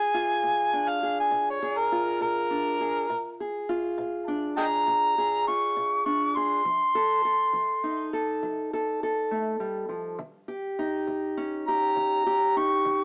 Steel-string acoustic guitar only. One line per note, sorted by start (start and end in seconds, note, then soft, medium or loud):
0.00 0.14 F4 medium
0.00 1.02 G#4 medium
0.14 1.92 F4 medium
0.43 0.96 A#2 medium
0.73 2.49 D4 medium
1.03 1.61 G#4 medium
1.31 1.85 A#2 medium
1.62 2.79 G#4 medium
1.92 3.69 F4 medium
2.21 2.74 A#2 medium
2.51 3.06 D4 medium
2.80 3.06 G#4 medium
3.10 3.63 A#2 medium
3.40 4.57 G#4 medium
3.69 5.46 F4 medium
3.98 4.51 A#2 medium
4.28 6.05 D4 medium
4.58 5.17 G#4 medium
4.87 5.40 A#2 medium
5.18 6.36 G#4 medium
5.48 6.62 F4 medium
5.76 6.29 A#2 medium
6.06 6.61 D4 medium
6.37 6.62 G#4 medium
6.65 7.18 F3 medium
6.95 7.24 A4 medium
7.25 8.12 A4 medium
7.53 8.06 F3 medium
7.84 10.17 D#4 medium
8.13 8.72 A4 medium
8.43 8.96 F3 medium
8.73 9.02 A4 medium
9.03 10.17 A4 medium
9.31 9.60 A3 medium
9.60 9.88 G3 medium
9.89 10.19 F3 medium
10.19 10.72 D#3 medium
10.48 11.67 G4 medium
10.79 12.55 D#4 medium
11.07 11.61 D#3 medium
11.37 13.04 C#4 medium
11.68 12.25 G4 medium
11.96 12.50 D#3 medium
12.26 13.04 G4 medium
12.56 13.04 D#4 medium
12.85 13.04 D#3 medium